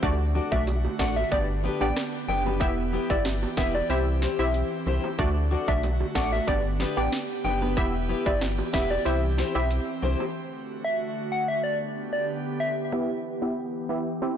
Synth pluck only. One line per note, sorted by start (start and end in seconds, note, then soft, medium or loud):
0.03 0.18 A3 loud
0.03 0.19 D4 medium
0.03 0.19 F#4 loud
0.03 0.19 D5 loud
0.52 0.66 A3 medium
0.52 0.66 D4 medium
0.52 0.66 F#4 medium
0.52 0.66 D5 medium
0.99 1.15 A3 medium
0.99 1.15 D4 medium
0.99 1.15 F#4 medium
0.99 1.15 D5 medium
1.31 1.47 B3 medium
1.31 1.47 D4 medium
1.31 1.48 G4 medium
1.31 1.48 D5 loud
1.81 1.95 B3 medium
1.81 1.95 D4 medium
1.81 1.95 G4 medium
1.81 1.95 D5 medium
2.60 2.76 B3 loud
2.60 2.76 E4 medium
2.60 2.76 G4 medium
2.60 2.76 E5 loud
3.10 3.24 B3 medium
3.10 3.24 E4 medium
3.10 3.24 G4 medium
3.10 3.24 E5 medium
3.58 3.73 B3 medium
3.58 3.73 E4 medium
3.58 3.73 G4 medium
3.58 3.74 E5 medium
3.90 4.06 C4 medium
3.90 4.06 E4 medium
3.90 4.06 G4 medium
3.90 4.06 E5 loud
4.39 4.53 C4 medium
4.39 4.53 E4 medium
4.39 4.53 G4 medium
4.39 4.53 E5 medium
5.19 5.35 A3 loud
5.19 5.35 D4 medium
5.19 5.35 F#4 medium
5.19 5.35 D5 loud
5.68 5.82 A3 medium
5.68 5.82 D4 medium
5.68 5.82 F#4 medium
5.68 5.82 D5 medium
6.15 6.31 A3 medium
6.15 6.31 D4 medium
6.15 6.31 F#4 medium
6.15 6.31 D5 medium
6.47 6.63 B3 loud
6.47 6.63 D4 medium
6.47 6.64 G4 medium
6.47 6.64 D5 loud
6.97 7.11 B3 medium
6.97 7.11 D4 medium
6.97 7.11 G4 medium
6.97 7.11 D5 medium
7.77 7.93 B3 loud
7.77 7.93 E4 medium
7.77 7.93 G4 medium
7.77 7.93 E5 loud
8.26 8.40 B3 medium
8.26 8.40 E4 medium
8.26 8.40 G4 medium
8.26 8.40 E5 medium
8.73 8.89 B3 medium
8.73 8.89 E4 medium
8.73 8.89 G4 medium
8.73 8.90 E5 medium
9.05 9.21 C4 loud
9.05 9.21 E4 medium
9.05 9.22 G4 medium
9.05 9.22 E5 loud
9.55 9.69 C4 medium
9.55 9.69 E4 medium
9.55 9.69 G4 medium
9.55 9.69 E5 medium
12.92 13.09 B3 medium
12.92 13.09 E4 medium
12.92 13.09 G4 medium
12.92 13.09 E5 loud
13.42 13.56 B3 medium
13.42 13.56 E4 medium
13.42 13.56 G4 medium
13.42 13.56 E5 medium
13.89 14.05 B3 medium
13.89 14.05 E4 medium
13.89 14.06 G4 medium
13.89 14.06 E5 medium
14.22 14.37 C4 medium
14.22 14.37 E4 medium
14.22 14.37 G4 medium
14.22 14.37 E5 loud